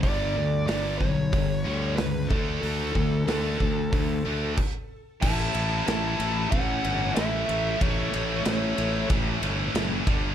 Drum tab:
CC |--------|------x-|x-------|--------|
RD |--------|--------|-xxxxxxx|xxxxxxxx|
HH |o-o-o-o-|o-o-o---|--------|--------|
SD |--o---o-|--o-----|--o---o-|--o---o-|
BD |o--oo--o|-o-oo-o-|o---o---|o---o--o|